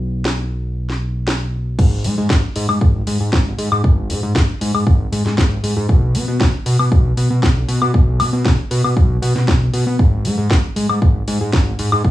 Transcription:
Already playing: B1
0.25 snare
0.90 snare
1.28 snare
1.79 G#1, kick, crash
2.04 G#2, open hi-hat
2.18 G#2
2.30 G#1, kick, snare
2.56 G#2, open hi-hat
2.69 G#2, high woodblock
2.81 G#1, kick
3.07 G#2, open hi-hat
3.20 G#2
3.33 G#1, kick, snare
3.58 G#2, open hi-hat
3.72 G#2, high woodblock
3.84 G#1, kick
4.10 G#2, open hi-hat
4.23 G#2
4.35 G#1, kick, snare
4.61 G#2, open hi-hat
4.74 G#2, high woodblock
4.87 G#1, kick
5.12 G#2, open hi-hat
5.25 G#2, snare
5.38 G#1, kick, snare
5.63 G#2, open hi-hat
5.77 G#2
5.89 B1, kick
6.15 B2, open hi-hat
6.28 B2
6.40 B1, kick, snare
6.66 B2, open hi-hat
6.79 B2, high woodblock
6.92 B1, kick
7.17 B2, open hi-hat
7.30 B2
7.43 B1, kick, snare
7.68 B2, open hi-hat
7.82 B2, high woodblock
7.94 B1, kick
8.20 B2, open hi-hat, high woodblock
8.33 B2
8.45 B1, kick, snare
8.71 B2, open hi-hat
8.84 B2, high woodblock
8.97 B1, kick
9.22 B2, open hi-hat
9.35 B2, snare
9.48 B1, kick, snare
9.73 B2, open hi-hat
9.87 B2
9.99 G#1, kick
10.25 G#2, open hi-hat
10.38 G#2
10.51 G#1, kick, snare
10.76 G#2, open hi-hat
10.89 G#2, high woodblock
11.02 G#1, kick
11.28 G#2, open hi-hat
11.41 G#2
11.53 G#1, kick, snare
11.79 G#2, open hi-hat
11.92 G#2, high woodblock
12.04 G#1, kick

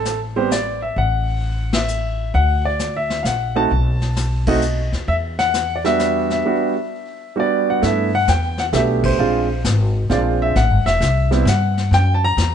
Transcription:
Already playing: A1 A4
0.05 snare, hi-hat pedal
0.36 G3 B3 C4 G4 C5
0.51 D5, snare, hi-hat pedal
0.82 E5
0.96 A1 F#5, brush sweep
1.73 E5, snare, ride
1.88 hi-hat pedal
2.34 D2 F#5, brush sweep
2.65 D5
2.79 snare, hi-hat pedal
2.96 E5
3.10 snare
3.23 A#1 F5 F#5, snare, hi-hat pedal
3.56 A3 C4 D#4 F#4 A5
3.71 B1, brush sweep
4.01 snare
4.16 snare, hi-hat pedal
4.47 A3 C4 D#4 F#4 D#5, kick, ride
4.62 hi-hat pedal
4.92 D#2, snare
5.08 E2 E5, brush sweep
5.39 F#5, snare
5.54 snare, hi-hat pedal
5.76 D5
5.84 G3 B3 D4 F#4 E5, snare
5.99 snare, hi-hat pedal
6.30 E5, snare
6.46 G3 B3 D4 F#4
7.36 G3 B3 D4 F#4 D5
7.70 F#5
7.82 G2 A3 B3 D4 E4 E5, brush sweep, snare
8.15 F#5
8.28 E2 G5, snare, hi-hat pedal
8.58 F#5, snare
8.73 B1 A3 B3 D4 G4 E5, snare, hi-hat pedal
9.04 C5, kick, crash
9.18 A#1 G#3 C4 D4 F4, brush sweep
9.64 G#1, snare, hi-hat pedal
10.09 A#1 G#3 C4 D4 F4 D5, snare
10.42 E5
10.56 A1 F#5, brush sweep, snare
10.70 G1
10.85 E1 E5, snare
11.00 C2, snare, hi-hat pedal
11.31 G3 B3 C4 E4, snare
11.43 G2 E5
11.47 F#5, snare, hi-hat pedal
11.78 snare
11.91 F#2 G5, brush sweep, snare
12.14 A5
12.24 A#5
12.37 E2, snare, hi-hat pedal

